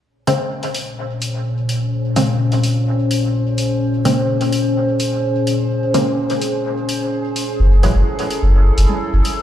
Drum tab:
HH |--o--oo---o---o-|--o--oo---o---o-|--o--oo---o---o-|--o--oo---o---o-|
T1 |----------------|----------------|----------------|----------------|

HH |--o--oo---o---o-|
T1 |-----------o----|